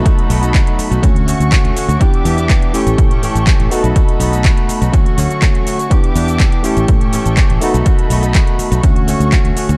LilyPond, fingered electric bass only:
\new Staff \with { instrumentName = "Fingered electric bass" } { \clef bass \time 4/4 \key b \minor \tempo 4 = 123 r8 b,,8 r8. b,,16 d,8 r16 d,16 r16 d,16 r16 d,16 | r8 e,8 r8. a,,16 a,8 r16 a,,16 r16 a,,16 r16 b,,16 | r8 b,,8 r8. b,,16 r8 d,16 r4 r16 | r8 e,8 r8. a,,16 a,8 r16 a,,16 r16 a,,16 r16 b,,16 |
r8 b,,8 r8. b,,16 d,8 r16 d,16 r16 d,16 r16 d,16 | }